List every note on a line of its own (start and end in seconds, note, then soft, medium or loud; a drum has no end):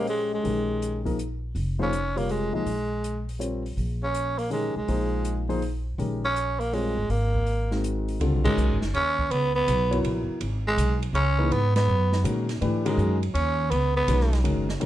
0.00 0.40 A#1 medium
0.00 0.42 G#3 medium
0.00 0.41 C#4 soft
0.00 0.41 G4 medium
0.00 0.42 C5 medium
0.00 0.42 D#5 medium
0.07 0.31 G#3 medium
0.07 open hi-hat soft
0.35 1.03 G#3 medium
0.43 1.51 A#1 medium
0.43 1.00 D#3 soft
0.43 1.00 G#3 soft
0.43 1.01 C#4 soft
0.43 1.01 G4 soft
0.43 1.01 A#4 soft
0.43 open hi-hat soft
0.82 closed hi-hat soft
1.05 1.17 F3 medium
1.05 1.17 A#3 soft
1.05 1.17 D#4 medium
1.05 1.17 G#4 medium
1.05 1.17 A#4 medium
1.05 kick soft
1.05 open hi-hat soft
1.19 closed hi-hat soft
1.55 2.49 F1 medium
1.55 open hi-hat soft
1.79 1.91 F3 medium
1.79 1.91 A#3 medium
1.79 2.20 C#4 medium
1.79 1.91 D#4 medium
1.79 1.91 G#4 medium
1.79 1.91 C5 medium
1.93 closed hi-hat soft
2.16 2.51 C3 soft
2.16 2.51 G3 soft
2.16 2.32 A#3 medium
2.16 2.51 F4 soft
2.16 2.51 A#4 soft
2.16 2.51 C#5 medium
2.16 open hi-hat soft
2.29 2.54 G#3 medium
2.29 open hi-hat soft
2.53 2.65 B1 medium
2.53 2.64 F3 soft
2.53 3.25 G#3 medium
2.53 2.65 A#3 soft
2.53 2.65 D#4 soft
2.53 2.65 G#4 soft
2.53 2.65 D#5 medium
2.66 3.73 A#1 medium
2.66 open hi-hat soft
3.04 closed hi-hat soft
3.29 open hi-hat soft
3.39 3.62 G3 soft
3.39 3.62 C4 soft
3.39 3.62 F4 soft
3.39 3.62 A#4 soft
3.39 3.62 C#5 medium
3.39 closed hi-hat soft
3.66 open hi-hat soft
3.77 4.71 A#1 medium
3.77 open hi-hat soft
4.04 4.40 C#4 medium
4.14 closed hi-hat soft
4.39 4.51 A#3 medium
4.39 open hi-hat soft
4.50 4.73 D#3 soft
4.50 4.73 G#3 soft
4.50 4.74 G#3 medium
4.50 4.73 C#4 medium
4.50 4.73 G4 soft
4.50 4.73 A#4 medium
4.50 open hi-hat soft
4.76 4.87 B1 medium
4.76 5.46 G#3 medium
4.88 5.95 A#1 medium
4.88 5.44 F3 soft
4.88 5.45 A#3 soft
4.88 5.45 D#4 soft
4.88 5.45 G#4 soft
4.88 5.45 C5 medium
4.88 open hi-hat soft
5.25 closed hi-hat soft
5.49 5.60 F3 medium
5.49 5.60 A#3 medium
5.49 5.61 D#4 medium
5.49 5.60 G#4 medium
5.49 5.61 C5 medium
5.49 open hi-hat soft
5.62 open hi-hat soft
5.98 6.93 A#1 medium
5.98 6.21 D#3 soft
5.98 6.21 G#3 soft
5.98 6.21 C#4 soft
5.98 6.21 G4 soft
5.98 6.21 A#4 medium
5.98 open hi-hat soft
6.25 6.62 C#4 medium
6.36 closed hi-hat soft
6.60 6.75 A#3 medium
6.60 open hi-hat soft
6.73 6.95 G3 soft
6.73 7.12 G#3 medium
6.73 6.95 C4 soft
6.73 6.95 F4 soft
6.73 6.95 A#4 soft
6.73 6.95 C#5 medium
6.73 open hi-hat soft
6.96 7.08 G1 medium
7.09 8.16 G#1 medium
7.09 7.84 A#3 medium
7.09 open hi-hat soft
7.34 kick soft
7.46 open hi-hat soft
7.71 8.18 G#3 soft
7.71 8.18 C4 soft
7.71 8.18 D#4 soft
7.71 8.18 F#4 soft
7.71 8.18 A#4 medium
7.71 snare soft
7.84 closed hi-hat soft
8.08 open hi-hat soft
8.20 8.32 C#2 medium
8.20 8.43 D3 medium
8.20 8.43 G3 medium
8.20 8.43 C4 soft
8.20 8.43 F4 soft
8.20 8.43 A4 medium
8.20 ride medium
8.32 8.44 B1 medium
8.44 8.56 G#1 medium
8.44 8.76 D#3 medium
8.44 8.79 G#3 medium
8.44 8.77 G#3 medium
8.44 8.77 C#4 medium
8.44 8.77 F#4 medium
8.44 8.77 A#4 medium
8.44 kick medium
8.44 crash medium
8.57 8.70 B1 medium
8.57 hi-hat pedal medium
8.70 8.81 G#1 soft
8.82 8.93 F#1 medium
8.82 snare medium
8.94 9.29 D#2 medium
8.94 9.33 C#4 loud
8.94 ride medium
9.19 kick soft
9.30 9.66 C#2 medium
9.30 9.55 B3 medium
9.30 ride medium
9.55 10.01 B3 medium
9.67 10.03 B1 medium
9.67 hi-hat pedal medium
9.67 ride medium
9.91 10.38 F#3 medium
9.91 10.38 B3 medium
9.91 10.38 E4 medium
9.91 10.38 A#4 medium
9.91 10.38 C#5 medium
9.91 ride soft
10.04 10.27 A#1 medium
10.04 ride medium
10.28 muted upright bass stroke soft
10.41 10.76 G#1 medium
10.41 ride medium
10.67 11.00 G#3 medium
10.77 11.12 B1 medium
10.77 hi-hat pedal medium
10.77 ride medium
11.03 ride soft
11.13 11.49 C#2 medium
11.13 11.54 C#4 loud
11.13 ride medium
11.38 11.50 E3 medium
11.38 11.50 A#3 medium
11.38 11.50 D#4 medium
11.38 11.50 G#4 medium
11.38 11.50 B4 medium
11.51 11.86 G#2 medium
11.51 11.76 B3 medium
11.51 ride medium
11.76 12.21 B3 medium
11.76 snare medium
11.76 ride medium
11.87 12.23 F#2 medium
12.13 snare medium
12.23 12.60 A#2 medium
12.23 12.46 D#3 medium
12.23 12.46 G#3 medium
12.23 12.46 C#4 soft
12.23 12.46 F#4 medium
12.23 12.46 A#4 medium
12.23 hi-hat pedal medium
12.23 ride medium
12.49 snare soft
12.49 ride soft
12.61 12.97 G#2 medium
12.61 12.83 E3 medium
12.61 12.83 A3 medium
12.61 12.83 D4 medium
12.61 12.83 G4 medium
12.61 12.83 B4 medium
12.61 ride medium
12.85 13.17 D#3 medium
12.85 13.17 G#3 medium
12.85 13.20 G#3 medium
12.85 13.17 C#4 medium
12.85 13.17 F#4 medium
12.85 13.17 A#4 medium
12.85 ride medium
12.97 13.33 F#2 medium
12.97 hi-hat pedal medium
13.23 ride soft
13.34 13.70 D#2 medium
13.34 13.72 C#4 medium
13.34 ride medium
13.71 14.07 C#2 medium
13.71 13.95 B3 medium
13.71 ride medium
13.97 14.42 B3 medium
14.08 14.43 B1 medium
14.08 14.30 D#3 soft
14.08 14.30 G#3 soft
14.08 14.30 C#4 soft
14.08 14.30 F#4 soft
14.08 14.30 A#4 soft
14.08 hi-hat pedal soft
14.08 ride medium
14.21 snare soft
14.33 snare soft
14.33 ride soft
14.44 14.80 F#1 medium
14.44 14.66 D#3 medium
14.44 14.66 G#3 medium
14.44 14.66 C#4 medium
14.44 14.66 F#4 medium
14.44 14.66 A#4 medium
14.44 ride medium
14.69 snare medium
14.80 14.86 G#1 medium
14.80 14.86 D#3 medium
14.80 14.86 G#3 medium
14.80 14.86 C#4 medium
14.80 14.86 F#4 medium
14.80 14.86 A#4 medium
14.80 ride medium